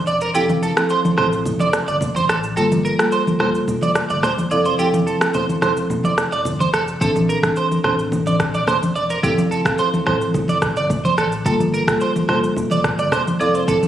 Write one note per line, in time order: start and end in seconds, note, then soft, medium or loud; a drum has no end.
0.07 0.30 E1 medium
0.07 0.16 D5 medium
0.07 shaker medium
0.21 0.30 A#4 medium
0.21 shaker medium
0.34 0.69 F1 loud
0.34 0.73 F3 medium
0.34 0.73 C4 medium
0.34 0.73 E4 medium
0.34 0.44 G4 loud
0.34 0.73 A4 loud
0.34 shaker medium
0.49 high conga medium
0.49 shaker medium
0.63 0.71 A4 medium
0.63 shaker medium
0.76 0.97 F3 medium
0.76 0.97 C4 medium
0.76 0.97 E4 medium
0.76 0.97 A4 medium
0.76 cross-stick loud
0.76 shaker medium
0.89 0.99 C5 medium
0.89 shaker medium
1.05 high conga medium
1.05 shaker soft
1.17 1.47 A1 medium
1.17 1.39 F3 medium
1.17 1.39 C4 medium
1.17 1.39 E4 medium
1.17 1.39 A4 medium
1.17 1.27 C5 medium
1.17 cross-stick medium
1.17 low conga medium
1.33 shaker medium
1.45 1.81 F1 medium
1.45 low conga medium
1.45 shaker medium
1.59 1.68 D5 medium
1.59 high conga medium
1.59 shaker medium
1.73 cross-stick medium
1.73 shaker medium
1.88 2.03 G1 medium
1.88 1.96 D5 medium
1.88 shaker soft
2.01 2.24 F1 loud
2.01 low conga medium
2.01 shaker medium
2.16 2.24 C5 medium
2.16 high conga medium
2.16 shaker medium
2.29 2.52 A1 loud
2.29 2.38 A4 medium
2.29 cross-stick medium
2.29 shaker medium
2.43 shaker medium
2.56 2.92 G1 loud
2.56 2.95 G3 medium
2.56 2.95 A#3 medium
2.56 2.96 F4 medium
2.56 2.66 A4 loud
2.56 2.96 A4 loud
2.56 shaker medium
2.72 high conga medium
2.72 shaker medium
2.85 2.93 A#4 medium
2.85 shaker medium
2.99 3.19 G3 medium
2.99 3.20 A#3 medium
2.99 3.20 F4 medium
2.99 3.20 A4 medium
2.99 cross-stick loud
2.99 shaker medium
3.12 3.21 C5 medium
3.12 shaker medium
3.27 high conga medium
3.27 shaker soft
3.40 3.63 F1 medium
3.40 3.61 G3 medium
3.40 3.61 A#3 medium
3.40 3.61 F4 medium
3.40 3.61 A4 medium
3.40 3.49 C5 medium
3.40 cross-stick medium
3.40 low conga medium
3.55 shaker medium
3.68 4.03 F1 medium
3.68 low conga medium
3.68 shaker medium
3.82 3.91 D5 medium
3.82 high conga medium
3.82 shaker medium
3.95 cross-stick medium
3.95 shaker medium
4.10 4.21 G1 medium
4.10 4.18 D5 medium
4.10 shaker soft
4.23 4.32 C5 medium
4.23 cross-stick medium
4.23 low conga medium
4.23 shaker medium
4.38 high conga medium
4.38 shaker medium
4.51 4.74 F1 loud
4.51 4.77 F3 loud
4.51 4.77 C4 medium
4.51 4.77 E4 medium
4.51 4.77 A4 loud
4.51 4.60 D5 medium
4.51 shaker medium
4.65 4.74 C5 medium
4.65 shaker medium
4.79 5.14 F1 loud
4.79 5.18 F3 medium
4.79 5.18 C4 medium
4.79 5.18 E4 medium
4.79 4.88 G4 loud
4.79 5.18 A4 loud
4.79 shaker medium
4.94 high conga medium
4.94 shaker medium
5.07 5.15 A4 medium
5.07 shaker medium
5.21 5.42 F3 medium
5.21 5.42 C4 medium
5.21 5.42 E4 medium
5.21 5.42 A4 medium
5.21 cross-stick loud
5.21 shaker medium
5.34 5.43 C5 medium
5.34 low conga medium
5.34 shaker medium
5.49 high conga medium
5.49 shaker soft
5.62 5.85 E1 medium
5.62 5.83 F3 medium
5.62 5.84 C4 medium
5.62 5.84 E4 medium
5.62 5.84 A4 medium
5.62 5.71 C5 medium
5.62 cross-stick medium
5.62 low conga medium
5.62 shaker soft
5.77 shaker medium
5.90 6.25 F1 loud
5.90 low conga medium
5.90 shaker medium
6.04 6.13 D5 medium
6.04 high conga medium
6.04 shaker medium
6.18 cross-stick medium
6.18 shaker medium
6.32 6.43 E1 medium
6.32 6.40 D5 medium
6.32 shaker soft
6.45 6.68 G1 loud
6.45 low conga medium
6.45 shaker medium
6.60 6.68 C5 medium
6.60 high conga medium
6.60 shaker medium
6.73 6.96 F1 loud
6.73 6.82 A4 medium
6.73 cross-stick medium
6.73 shaker soft
6.88 shaker medium
7.01 7.36 A#1 loud
7.01 7.40 E3 medium
7.01 7.40 C4 medium
7.01 7.40 D4 medium
7.01 7.10 A4 loud
7.01 7.40 A4 loud
7.01 kick loud
7.01 shaker medium
7.16 high conga medium
7.16 shaker medium
7.29 7.38 A#4 medium
7.29 shaker medium
7.43 7.64 E3 medium
7.43 7.64 C4 medium
7.43 7.64 D4 medium
7.43 7.64 A4 medium
7.43 kick medium
7.43 cross-stick loud
7.43 shaker medium
7.56 7.66 C5 medium
7.56 shaker medium
7.71 high conga medium
7.71 shaker soft
7.84 8.07 A1 medium
7.84 8.05 E3 medium
7.84 8.06 C4 medium
7.84 8.06 D4 medium
7.84 8.06 A4 medium
7.84 7.93 C5 medium
7.84 cross-stick medium
7.84 low conga medium
7.99 shaker soft
8.12 8.47 A1 loud
8.12 low conga medium
8.12 shaker medium
8.26 8.35 D5 medium
8.26 high conga medium
8.26 shaker medium
8.40 kick medium
8.40 cross-stick medium
8.40 shaker medium
8.54 8.65 A#1 medium
8.54 8.63 D5 medium
8.54 shaker soft
8.67 8.77 C5 medium
8.67 cross-stick medium
8.67 low conga medium
8.67 shaker medium
8.83 high conga medium
8.83 shaker medium
8.95 9.18 E1 medium
8.95 9.04 D5 medium
8.95 shaker medium
9.10 9.18 A#4 medium
9.10 shaker medium
9.23 9.58 F1 loud
9.23 9.62 F3 medium
9.23 9.62 C4 medium
9.23 9.62 E4 medium
9.23 9.32 G4 loud
9.23 9.62 A4 medium
9.23 kick loud
9.23 shaker medium
9.38 high conga medium
9.38 shaker medium
9.51 9.60 A4 medium
9.51 shaker medium
9.65 9.86 F3 medium
9.65 9.86 C4 medium
9.65 9.86 E4 medium
9.65 9.86 A4 medium
9.65 kick loud
9.65 cross-stick loud
9.65 shaker medium
9.78 9.88 C5 medium
9.78 shaker medium
9.94 high conga medium
9.94 shaker soft
10.06 10.36 A1 loud
10.06 10.28 F3 medium
10.06 10.28 C4 medium
10.06 10.28 E4 medium
10.06 10.28 A4 medium
10.06 10.16 C5 medium
10.06 kick loud
10.06 cross-stick medium
10.06 low conga medium
10.21 shaker medium
10.34 10.69 F1 medium
10.34 kick medium
10.34 low conga medium
10.34 shaker medium
10.48 10.57 D5 medium
10.48 high conga medium
10.48 shaker medium
10.62 kick medium
10.62 cross-stick medium
10.62 shaker medium
10.76 10.92 G1 medium
10.76 10.85 D5 medium
10.76 shaker soft
10.90 11.13 F1 medium
10.90 kick medium
10.90 low conga medium
10.90 shaker medium
11.05 11.13 C5 medium
11.05 high conga medium
11.05 shaker medium
11.18 11.41 A1 medium
11.18 11.27 A4 medium
11.18 cross-stick medium
11.18 shaker medium
11.32 shaker medium
11.45 11.80 G1 loud
11.45 11.84 G3 medium
11.45 11.84 A#3 medium
11.45 11.85 F4 medium
11.45 11.54 A4 loud
11.45 11.85 A4 loud
11.45 kick loud
11.45 shaker medium
11.60 high conga medium
11.60 shaker medium
11.74 11.82 A#4 medium
11.74 shaker medium
11.88 12.08 G3 medium
11.88 12.08 A#3 medium
11.88 12.09 F4 medium
11.88 12.09 A4 medium
11.88 kick medium
11.88 cross-stick loud
11.88 shaker medium
12.00 12.10 C5 medium
12.00 shaker medium
12.16 high conga medium
12.16 shaker soft
12.29 12.52 F1 loud
12.29 12.50 G3 medium
12.29 12.50 A#3 medium
12.29 12.50 F4 medium
12.29 12.50 A4 medium
12.29 12.38 C5 medium
12.29 cross-stick medium
12.29 low conga medium
12.44 shaker soft
12.56 12.92 F1 medium
12.56 low conga medium
12.56 shaker medium
12.71 12.79 D5 medium
12.71 high conga medium
12.71 shaker medium
12.84 kick medium
12.84 cross-stick medium
12.84 shaker medium
12.99 13.10 G1 medium
12.99 13.07 D5 medium
12.99 shaker soft
13.12 13.21 C5 medium
13.12 cross-stick medium
13.12 low conga medium
13.12 shaker medium
13.27 high conga medium
13.27 shaker medium
13.40 13.63 F1 loud
13.40 13.66 F3 medium
13.40 13.66 C4 medium
13.40 13.66 E4 medium
13.40 13.66 A4 loud
13.40 13.55 D5 medium
13.40 shaker medium
13.55 13.63 C5 medium
13.55 shaker medium
13.68 13.88 F1 loud
13.68 13.88 F3 medium
13.68 13.88 C4 medium
13.68 13.88 E4 medium
13.68 13.88 A4 loud
13.68 13.77 A4 medium
13.68 kick loud
13.68 shaker medium
13.83 high conga medium
13.83 shaker medium